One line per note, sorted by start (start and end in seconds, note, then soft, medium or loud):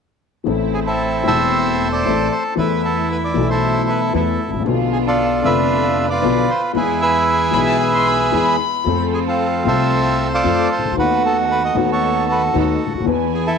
0.44 1.22 A1 medium
0.44 1.22 A2 medium
0.44 1.21 E3 medium
0.44 1.21 A3 medium
0.44 1.22 A3 medium
0.44 1.22 C4 medium
0.44 1.22 E4 medium
0.48 1.23 A4 medium
0.74 0.80 G#4 medium
0.87 1.88 C4 medium
0.87 1.88 E4 medium
0.87 1.23 A4 medium
1.23 2.01 E1 medium
1.23 2.01 E2 medium
1.23 2.00 E3 medium
1.23 2.01 A3 medium
1.23 2.01 C4 medium
1.23 2.01 E4 medium
1.23 1.92 A4 medium
1.23 2.02 A4 medium
1.23 2.28 C5 medium
1.23 1.89 E5 medium
1.92 2.54 A4 medium
1.92 2.33 D5 medium
2.05 2.27 A1 medium
2.05 2.27 A2 medium
2.05 2.27 E3 medium
2.05 2.27 A3 medium
2.05 2.27 C4 medium
2.05 2.27 E4 medium
2.05 2.27 A4 medium
2.32 2.44 C5 medium
2.56 3.32 E2 medium
2.56 3.32 E3 medium
2.56 3.32 A3 medium
2.56 3.32 B3 medium
2.56 3.33 B3 medium
2.56 3.32 E4 medium
2.56 3.50 E4 medium
2.56 2.82 B4 medium
2.60 3.33 A4 medium
2.85 3.09 A4 medium
3.12 3.17 B4 medium
3.24 3.48 D5 medium
3.34 4.10 B1 medium
3.34 4.10 B2 medium
3.34 4.09 E3 medium
3.34 4.10 A3 medium
3.34 4.10 E4 medium
3.38 4.11 A4 medium
3.50 4.13 E4 medium
3.50 4.13 A4 medium
3.50 3.90 C5 medium
3.89 4.01 B4 medium
4.13 4.36 E2 medium
4.13 4.36 E3 medium
4.13 4.36 A3 medium
4.13 4.36 B3 medium
4.13 4.36 E4 medium
4.13 4.63 E4 soft
4.13 4.36 A4 medium
4.13 4.51 A4 medium
4.47 4.52 G#1 soft
4.47 4.53 G#1 soft
4.53 4.58 A1 medium
4.53 4.60 A1 medium
4.59 4.65 A#1 medium
4.59 4.66 A#1 medium
4.64 5.40 B1 medium
4.64 5.40 B2 medium
4.64 5.39 D3 medium
4.64 5.40 F3 medium
4.64 5.40 B3 medium
4.64 5.41 B3 medium
4.64 5.41 D4 medium
4.64 5.41 F4 medium
4.69 5.41 F4 medium
4.92 4.98 G#4 medium
5.07 6.07 D4 medium
5.07 6.07 F4 medium
5.07 5.43 A4 medium
5.42 6.18 F1 medium
5.42 6.19 F1 medium
5.42 6.18 F2 medium
5.42 6.17 D3 medium
5.42 6.18 F3 medium
5.42 6.19 B3 medium
5.42 6.18 D4 medium
5.42 6.19 F4 medium
5.42 6.06 E5 medium
5.46 6.20 F4 medium
5.46 6.10 B4 medium
6.10 6.72 F4 medium
6.10 6.72 B4 medium
6.10 6.50 D5 medium
6.22 6.44 B1 medium
6.22 6.45 B1 medium
6.22 6.45 B2 medium
6.22 6.44 D3 medium
6.22 6.45 F3 medium
6.22 6.44 B3 medium
6.22 6.44 D4 medium
6.22 6.44 F4 medium
6.22 6.45 F4 medium
6.50 6.62 C5 medium
6.75 7.49 E2 medium
6.75 7.50 E2 medium
6.75 7.50 E3 medium
6.75 7.49 G#3 medium
6.75 7.49 B3 medium
6.75 7.50 B3 medium
6.75 7.50 E4 medium
6.75 7.77 E4 medium
6.75 7.50 G#4 medium
6.75 7.02 G#4 medium
6.75 7.51 G#4 medium
6.75 7.01 B4 medium
7.02 8.56 G#4 medium
7.02 8.56 B4 medium
7.02 8.56 E5 medium
7.51 8.29 B1 medium
7.51 8.29 B2 medium
7.51 8.28 E3 medium
7.51 8.28 G#3 medium
7.51 8.29 B3 medium
7.51 8.29 E4 medium
7.51 8.29 G#4 medium
7.51 7.59 B5 medium
7.55 8.30 G#4 medium
7.67 7.79 A5 medium
7.80 7.86 G#5 medium
7.93 8.08 C6 medium
8.07 8.33 B5 medium
8.32 8.55 E2 medium
8.32 8.55 E3 medium
8.32 8.55 G#3 medium
8.32 8.55 B3 medium
8.32 8.55 E4 medium
8.32 8.55 G#4 medium
8.32 8.96 B5 medium
8.85 9.61 F2 medium
8.85 9.62 F2 medium
8.85 9.62 F3 medium
8.85 9.61 A3 medium
8.85 9.61 C4 medium
8.85 9.62 C4 medium
8.85 9.61 F4 medium
8.85 9.61 A4 medium
8.85 9.62 A4 medium
9.14 9.20 G#4 medium
9.28 10.28 C4 medium
9.28 10.28 F4 medium
9.28 9.64 A4 medium
9.63 10.40 C2 medium
9.63 10.40 C3 medium
9.63 10.39 F3 medium
9.63 10.40 A3 medium
9.63 10.40 C4 medium
9.63 10.41 C4 medium
9.63 10.40 F4 medium
9.63 10.40 A4 medium
9.67 10.41 A4 medium
9.67 10.32 A4 medium
9.67 10.68 C5 medium
9.67 10.28 E5 medium
10.34 10.94 F4 medium
10.34 10.95 A4 medium
10.34 10.70 D5 medium
10.44 10.66 F2 medium
10.44 10.67 F2 medium
10.44 10.66 F3 medium
10.44 10.66 A3 medium
10.44 10.66 C4 medium
10.44 10.66 F4 medium
10.44 10.66 A4 medium
10.44 10.67 A4 medium
10.72 10.96 C5 medium
10.78 10.84 C2 soft
10.85 10.90 C#2 medium
10.85 10.91 C#2 medium
10.91 10.97 D2 medium
10.95 11.72 D#2 medium
10.95 11.72 D#3 medium
10.95 11.72 A3 medium
10.95 11.72 B3 medium
10.95 11.72 D#4 medium
10.95 11.91 F#4 medium
10.95 11.73 F#4 medium
10.95 11.72 A4 medium
10.99 11.23 B4 medium
11.26 11.37 A4 medium
11.51 11.63 B4 medium
11.65 11.76 D#5 medium
11.73 12.50 D#2 medium
11.73 12.50 D#3 medium
11.73 12.50 A3 medium
11.73 12.51 B3 medium
11.73 12.51 D#4 medium
11.73 12.51 A4 medium
11.78 12.51 F#4 medium
11.92 12.58 F#4 medium
11.92 12.57 A4 medium
11.92 12.27 C#5 medium
12.31 12.43 B4 medium
12.53 12.76 D#2 medium
12.53 12.77 D#2 medium
12.53 12.76 D#3 medium
12.53 12.76 A3 medium
12.53 12.76 B3 medium
12.53 12.76 D#4 medium
12.53 12.76 F#4 medium
12.53 12.76 A4 medium
12.59 13.06 F#4 soft
12.59 12.93 A4 medium
12.86 12.93 C#2 soft
12.94 13.00 D2 medium
13.00 13.07 D#2 medium
13.00 13.06 D#2 medium
13.04 13.58 E2 medium
13.04 13.06 E3 medium
13.04 13.58 E3 medium
13.04 13.58 B3 medium
13.04 13.58 E4 medium
13.04 13.58 G#5 medium
13.08 13.58 B4 medium
13.34 13.47 G#4 medium
13.47 13.58 E4 medium
13.47 13.58 A4 medium